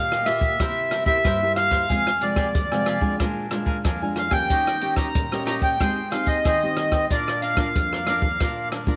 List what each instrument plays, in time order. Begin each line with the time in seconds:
Already playing: nylon-string guitar A#2 A#3 F4 G4, accordion F5
0.12 cavaquinho G4 D#5 F5, cross-stick
0.25 nylon-string guitar A#3 F4 G4, cavaquinho F4 G4 D#5 F5, accordion E5, cross-stick, closed hi-hat
0.41 cavaquinho G4 D#5 F5, kick, closed hi-hat
0.60 nylon-string guitar C3 A#3 E4 G4, cavaquinho E4 A#4 C5 E5, kick, cross-stick, closed hi-hat
0.91 cavaquinho E4 A#4 C5 E5, cross-stick, closed hi-hat
1.06 nylon-string guitar A#3 E4 G4, cavaquinho E4 A#4 C5 E5, accordion E5, kick
1.24 nylon-string guitar G2, cavaquinho E4 A#4 C5 E5, kick, cross-stick, closed hi-hat
1.41 nylon-string guitar A#3 E4 G4, cavaquinho A#4 C5 E5
1.56 accordion F5, cross-stick, closed hi-hat
1.71 cavaquinho A#4 C5 E5, kick, cross-stick
1.89 nylon-string guitar F2 C3 F3 G#3 C4 F4, cavaquinho G#4 F5 G#5, kick, closed hi-hat
2.07 cross-stick, closed hi-hat
2.21 nylon-string guitar C3 F3 G#3 C4 F4, cavaquinho G4 G#4 F5 G#5, accordion D5, closed hi-hat
2.36 cavaquinho G4 G#4 F5 G#5, kick, cross-stick
2.54 nylon-string guitar F2, kick, closed hi-hat
2.71 nylon-string guitar C3 F3 G#3 C4 F4, cavaquinho G4 F5 G#5, cross-stick
2.86 cavaquinho G4 G#4 F5 G#5, cross-stick, closed hi-hat
3.01 nylon-string guitar G#3 D4 F4, cavaquinho G4 F5 G#5, kick
3.20 nylon-string guitar A#2, cavaquinho D4 A#4 F5 G#5, kick, cross-stick, closed hi-hat
3.51 nylon-string guitar G#3 D4 F4, cavaquinho D4 A#4 F5 G#5, cross-stick, closed hi-hat
3.66 cavaquinho D4 A#4 F5 G#5, kick
3.84 nylon-string guitar F2, cavaquinho D4 A#4 F5 G#5, kick, cross-stick, closed hi-hat
4.01 nylon-string guitar G#3 D4 F4, cavaquinho A#4 F5 G#5
4.16 accordion F5, cross-stick, closed hi-hat
4.31 nylon-string guitar A#3 C#4 G4, cavaquinho A#4 F5 G#5, accordion G5, kick, cross-stick
4.50 nylon-string guitar D#3, cavaquinho D#4 G4 C#5 D#5, kick, closed hi-hat
4.67 cross-stick, closed hi-hat
4.81 nylon-string guitar A#3 C#4 G4, cavaquinho D#4 G4 C#5 D#5, closed hi-hat
4.96 cavaquinho D#4 G4 C#5 D#5, accordion A#5, kick, cross-stick, closed hi-hat
5.15 nylon-string guitar A#2, kick, closed hi-hat
5.32 nylon-string guitar A#3 C#4 G4, cavaquinho G4 C#5 D#5, cross-stick
5.46 cavaquinho D#4 G4 C#5 D#5, accordion A#5, cross-stick, closed hi-hat
5.61 cavaquinho G4 C#5 D#5, accordion G5, kick, closed hi-hat
5.80 nylon-string guitar G#3 C4 D#4 G4, cavaquinho G#4 C5 D#5 G5, kick, cross-stick, closed hi-hat
6.11 nylon-string guitar C4 D#4 G4, cavaquinho G#4 C5 D#5 G5, accordion F5, cross-stick, closed hi-hat
6.26 cavaquinho G#4 C5 D#5 G5, accordion D#5, kick
6.45 nylon-string guitar D#3, cavaquinho G#4 C5 D#5 G5, kick, cross-stick, closed hi-hat
6.62 nylon-string guitar C4 D#4 G4, cavaquinho C5 D#5 G5
6.77 cross-stick, closed hi-hat
6.92 cavaquinho C5 D#5 G5, kick, cross-stick
7.10 nylon-string guitar A#2 A#3 D4 F4, cavaquinho D4 A#4 D5 F5, accordion D5, kick, closed hi-hat
7.28 cross-stick, closed hi-hat
7.42 cavaquinho D4 A#4 D5 F5, accordion F5, closed hi-hat
7.57 nylon-string guitar A#3 D4 F4, cavaquinho D4 A#4 D5 F5, kick, cross-stick
7.75 nylon-string guitar F2, kick, closed hi-hat
7.93 cavaquinho A#4 D5 F5, cross-stick
8.07 nylon-string guitar A#3 D4 F4, cavaquinho D4 A#4 D5 F5, cross-stick, closed hi-hat
8.22 cavaquinho A#4 D5 F5, kick
8.40 nylon-string guitar A#2 A#3 D4 F4, cavaquinho D4 A#4 D5 F5, kick, cross-stick, closed hi-hat
8.72 cavaquinho D4 A#4 D5 F5, cross-stick, closed hi-hat
8.87 nylon-string guitar A#3 D4 F4, cavaquinho D4 A#4 D5 F5, kick